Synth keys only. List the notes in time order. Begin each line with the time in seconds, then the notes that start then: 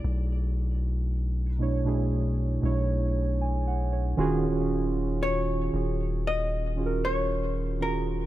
Already playing: B2 A3 D4 E4 G#4
1.58 B2 A3 D4 E4 C#5
1.84 B2 A3 D4 E4 G#4
2.62 B2 A3 D4 E4 C#5
3.41 G#5
3.67 F#5
3.93 C#5
4.17 D#3 C#4 F4 F#4 G#4
5.72 D#3 C#4 F4 F#4 G#4
6.76 D#3 C#4 F4 F#4 G#4
6.86 A#4
7.79 D#3 C#4 F4 F#4 G#4